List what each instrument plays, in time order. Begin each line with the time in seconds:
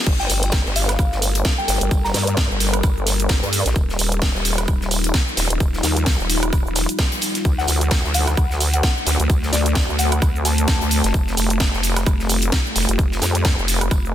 Already playing: ambient pad G4
0.06 wobble bass G1, ambient pad G3 A4 A#4, kick, closed hi-hat, crash, tambourine, cabasa
0.20 synth bell G5, snare, cabasa
0.30 wobble bass G1, open hi-hat, tambourine, cabasa
0.43 closed hi-hat, cabasa
0.52 kick, snare, closed hi-hat, tambourine, cabasa
0.65 wobble bass G1, snare, cabasa
0.76 synth bell F5, open hi-hat, tambourine, cabasa
0.89 snare, closed hi-hat, cabasa, high woodblock
0.99 wobble bass G1, kick, closed hi-hat, tambourine, cabasa, high woodblock
1.12 snare, cabasa
1.22 open hi-hat, tambourine, cabasa
1.35 closed hi-hat, cabasa
1.45 kick, snare, closed hi-hat, tambourine, cabasa
1.58 synth bell G5, cabasa
1.68 wobble bass G1, synth bell G5, snare, open hi-hat, tambourine, cabasa
1.81 wobble bass G1, closed hi-hat, cabasa
1.91 wobble bass G1, kick, closed hi-hat, tambourine, cabasa
2.04 synth bell A#5, snare, cabasa
2.14 wobble bass G2, synth bell A#5, snare, open hi-hat, tambourine, cabasa
2.27 closed hi-hat, cabasa
2.37 kick, snare, closed hi-hat, tambourine, cabasa
2.50 wobble bass G1, cabasa
2.60 snare, open hi-hat, tambourine, cabasa
2.73 closed hi-hat, cabasa, high woodblock
2.83 wobble bass G1, kick, closed hi-hat, tambourine, cabasa, high woodblock
2.97 cabasa
3.07 snare, open hi-hat, tambourine, cabasa
3.20 closed hi-hat, cabasa
3.29 wobble bass G1, kick, snare, closed hi-hat, tambourine, cabasa
3.43 wobble bass G2, closed hi-hat, cabasa
3.53 open hi-hat, tambourine, cabasa
3.66 wobble bass A#1, snare, closed hi-hat, cabasa
3.76 wobble bass D#1, ambient pad D#4 F4, kick, closed hi-hat, tambourine, cabasa
3.89 snare, cabasa
3.99 wobble bass D#1, open hi-hat, tambourine, cabasa
4.12 closed hi-hat, cabasa
4.22 kick, snare, closed hi-hat, tambourine, cabasa
4.35 wobble bass D#1, snare, cabasa
4.45 open hi-hat, tambourine, cabasa
4.58 snare, closed hi-hat, cabasa, high woodblock
4.68 wobble bass D#1, kick, closed hi-hat, tambourine, cabasa, high woodblock
4.81 snare, cabasa
4.91 open hi-hat, tambourine, cabasa
5.04 closed hi-hat, cabasa
5.14 kick, snare, closed hi-hat, tambourine, cabasa
5.28 cabasa
5.37 wobble bass D#1, snare, open hi-hat, tambourine, cabasa
5.50 wobble bass D#1, closed hi-hat, cabasa
5.60 wobble bass D#1, kick, closed hi-hat, tambourine, cabasa
5.73 snare, cabasa
5.83 wobble bass D#2, snare, open hi-hat, tambourine, cabasa
5.97 closed hi-hat, cabasa
6.06 kick, snare, closed hi-hat, tambourine, cabasa
6.19 wobble bass D#1, cabasa
6.30 snare, open hi-hat, tambourine, cabasa
6.43 closed hi-hat, cabasa, high woodblock
6.53 wobble bass D#1, kick, closed hi-hat, tambourine, cabasa, high woodblock
6.66 wobble bass D#1, cabasa
6.75 snare, open hi-hat, tambourine, cabasa
6.89 closed hi-hat, cabasa
6.99 kick, snare, closed hi-hat, tambourine, cabasa
7.12 closed hi-hat, cabasa
7.21 open hi-hat, tambourine, cabasa
7.35 snare, closed hi-hat, cabasa
7.45 wobble bass D2, ambient pad A3 D4 F#4, kick, closed hi-hat, tambourine, cabasa
7.58 synth bell F#5, snare, cabasa
7.67 wobble bass D2, open hi-hat, tambourine, cabasa
7.81 closed hi-hat, cabasa
7.91 kick, snare, closed hi-hat, tambourine, cabasa
8.04 wobble bass D2, snare, cabasa
8.14 synth bell F#5, open hi-hat, tambourine, cabasa
8.27 snare, closed hi-hat, cabasa, high woodblock
8.37 wobble bass D2, kick, closed hi-hat, tambourine, cabasa, high woodblock
8.51 snare, cabasa
8.60 open hi-hat, tambourine, cabasa
8.73 synth bell F#5, closed hi-hat, cabasa
8.83 synth bell F#5, kick, snare, closed hi-hat, tambourine, cabasa
8.97 cabasa
9.06 wobble bass D2, snare, open hi-hat, tambourine, cabasa
9.20 wobble bass D2, closed hi-hat, cabasa
9.30 wobble bass D2, ambient pad C4, kick, closed hi-hat, tambourine, cabasa
9.43 snare, cabasa
9.52 wobble bass D2, synth bell D5, snare, open hi-hat, tambourine, cabasa
9.66 closed hi-hat, cabasa
9.75 kick, snare, closed hi-hat, tambourine, cabasa
9.89 wobble bass D2, cabasa
9.98 synth bell F#5, snare, open hi-hat, tambourine, cabasa
10.12 synth bell F#5, closed hi-hat, cabasa, high woodblock
10.22 wobble bass D2, kick, closed hi-hat, tambourine, cabasa, high woodblock
10.36 cabasa
10.45 synth bell A5, snare, open hi-hat, tambourine, cabasa
10.58 closed hi-hat, cabasa
10.68 wobble bass D2, kick, snare, closed hi-hat, tambourine, cabasa
10.81 wobble bass D2, closed hi-hat, cabasa
10.91 open hi-hat, tambourine, cabasa
11.04 wobble bass F#1, snare, closed hi-hat, cabasa
11.14 wobble bass F1, ambient pad F4 G4, kick, closed hi-hat, tambourine, cabasa
11.27 snare, cabasa
11.37 wobble bass F1, open hi-hat, tambourine, cabasa
11.50 closed hi-hat, cabasa
11.60 kick, snare, closed hi-hat, tambourine, cabasa
11.73 wobble bass F1, snare, cabasa
11.83 open hi-hat, tambourine, cabasa
11.96 snare, closed hi-hat, cabasa, high woodblock
12.06 wobble bass F1, kick, closed hi-hat, tambourine, cabasa, high woodblock
12.20 snare, cabasa
12.29 open hi-hat, tambourine, cabasa
12.42 closed hi-hat, cabasa
12.52 kick, snare, closed hi-hat, tambourine, cabasa
12.66 cabasa
12.76 wobble bass F1, snare, open hi-hat, tambourine, cabasa
12.89 wobble bass F1, closed hi-hat, cabasa
12.99 wobble bass F1, ambient pad A4, kick, closed hi-hat, tambourine, cabasa
13.12 snare, cabasa
13.22 wobble bass F2, snare, open hi-hat, tambourine, cabasa
13.35 closed hi-hat, cabasa
13.45 kick, snare, closed hi-hat, tambourine, cabasa
13.58 wobble bass F1, cabasa
13.68 snare, open hi-hat, tambourine, cabasa
13.81 closed hi-hat, cabasa, high woodblock
13.91 wobble bass F1, kick, closed hi-hat, tambourine, cabasa, high woodblock
14.05 cabasa